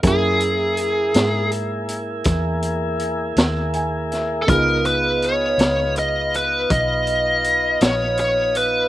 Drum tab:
HH |xxxxxxxxxxxx|xxxxxxxxxxxx|
SD |---o--o--o-o|---o-----o--|
BD |o-----o-----|o-----o-----|